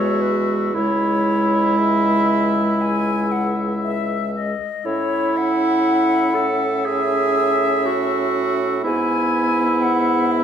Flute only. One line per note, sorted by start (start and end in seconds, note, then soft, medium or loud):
0.00 0.23 C#5 medium
0.22 0.74 B4 medium
0.75 1.80 C#5 medium
1.78 2.83 E5 medium
2.81 3.33 G#5 medium
3.32 3.60 F#5 medium
3.83 4.31 E5 medium
4.36 4.87 D#5 medium
4.85 5.39 C#5 medium
5.37 6.86 F#5 medium
6.85 8.59 E5 medium
8.84 9.84 G#5 medium
9.82 10.33 F#5 medium
10.31 10.44 E5 medium